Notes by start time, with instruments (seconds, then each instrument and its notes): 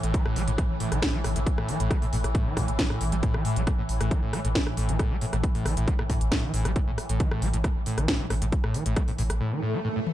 Already playing: synth drone A2 E3
0.03 sub bass A1, acid bass A2, closed hi-hat
0.14 acid bass E3, kick, closed hi-hat
0.26 sub bass A1, acid bass A2, cross-stick
0.36 sub bass A1, acid bass A3, open hi-hat
0.48 sub bass A1, acid bass A2, closed hi-hat
0.58 acid bass A2, kick, cross-stick, closed hi-hat
0.70 sub bass A1
0.80 acid bass A2, open hi-hat
0.92 sub bass A1, acid bass E3, cross-stick, closed hi-hat
1.02 acid bass A2, kick, snare, closed hi-hat
1.14 sub bass A1, acid bass A3
1.24 sub bass A1, acid bass A2, cross-stick, open hi-hat
1.36 sub bass A1, acid bass A2, closed hi-hat
1.46 kick, closed hi-hat
1.58 sub bass A1, acid bass A2, cross-stick
1.69 acid bass E3, open hi-hat
1.80 sub bass A1, acid bass A2, closed hi-hat
1.91 acid bass A3, kick, cross-stick, closed hi-hat
2.02 sub bass A1, acid bass A2, open hi-hat
2.13 sub bass A1, acid bass A2, open hi-hat
2.24 sub bass A1, cross-stick, closed hi-hat
2.35 acid bass A2, kick, closed hi-hat
2.46 sub bass A1, acid bass E3
2.57 acid bass A2, kick, cross-stick, open hi-hat
2.68 sub bass A1, acid bass A#2, closed hi-hat
2.79 acid bass E3, kick, snare, closed hi-hat
2.90 sub bass A1, acid bass A2, cross-stick
3.01 sub bass A1, acid bass A2, open hi-hat
3.12 sub bass A1, acid bass G3, closed hi-hat
3.23 acid bass A2, kick, closed hi-hat
3.34 sub bass A1, acid bass E3, cross-stick
3.45 acid bass A2, open hi-hat
3.56 sub bass A1, acid bass A3, closed hi-hat
3.67 acid bass A2, kick, cross-stick, closed hi-hat
3.79 sub bass A1, acid bass A2
3.89 sub bass A1, open hi-hat
4.01 sub bass A1, acid bass A2, cross-stick, closed hi-hat
4.11 acid bass E3, kick, closed hi-hat
4.23 sub bass A1, acid bass A2
4.33 acid bass A3, cross-stick, open hi-hat
4.45 sub bass A1, acid bass A2, closed hi-hat
4.55 acid bass A2, kick, snare, closed hi-hat
4.67 sub bass A1, cross-stick
4.77 sub bass A1, acid bass A2, open hi-hat
4.89 sub bass A1, acid bass E3, closed hi-hat
4.99 acid bass A2, kick, cross-stick, closed hi-hat
5.11 sub bass A1, acid bass A3
5.21 acid bass A2, open hi-hat
5.33 sub bass A1, acid bass A2, cross-stick, closed hi-hat
5.44 kick, closed hi-hat
5.55 sub bass A1, acid bass A2, open hi-hat
5.66 sub bass A1, acid bass E3, cross-stick, open hi-hat
5.77 sub bass A1, acid bass A2, closed hi-hat
5.88 acid bass A3, kick, closed hi-hat
5.99 sub bass A1, acid bass A2, cross-stick
6.10 acid bass A2, kick, open hi-hat
6.21 sub bass A1, closed hi-hat
6.32 acid bass A2, kick, cross-stick, snare, closed hi-hat
6.43 sub bass A1, acid bass E3
6.54 sub bass A1, acid bass A2, open hi-hat
6.65 sub bass A1, acid bass A3, cross-stick, closed hi-hat
6.76 acid bass A2, kick, closed hi-hat
6.87 sub bass A1, acid bass A2
6.98 cross-stick, open hi-hat
7.09 sub bass A1, acid bass A2, closed hi-hat
7.20 acid bass E3, kick, closed hi-hat
7.31 sub bass A1, acid bass A2, cross-stick
7.42 sub bass A1, acid bass A3, open hi-hat
7.53 sub bass A1, acid bass A2, closed hi-hat
7.64 acid bass A2, kick, cross-stick, closed hi-hat
7.76 sub bass A1
7.86 acid bass A2, open hi-hat
7.98 sub bass A1, acid bass E3, cross-stick, closed hi-hat
8.08 acid bass A2, kick, snare, closed hi-hat
8.20 sub bass A1, acid bass A3
8.30 sub bass A1, acid bass A2, cross-stick, open hi-hat
8.42 sub bass A1, acid bass A2, closed hi-hat
8.52 kick, closed hi-hat
8.64 sub bass A1, acid bass A2, cross-stick
8.74 acid bass E3, open hi-hat
8.86 sub bass A1, acid bass A2, closed hi-hat
8.96 acid bass A3, kick, cross-stick, closed hi-hat
9.08 sub bass A1, acid bass A2, open hi-hat
9.18 sub bass A1, acid bass A2, open hi-hat
9.30 sub bass A1, cross-stick, closed hi-hat
9.41 acid bass A2, swell
9.52 acid bass E3
9.63 acid bass A2
9.74 acid bass A3
9.85 acid bass A2
9.96 acid bass A2
10.07 high tom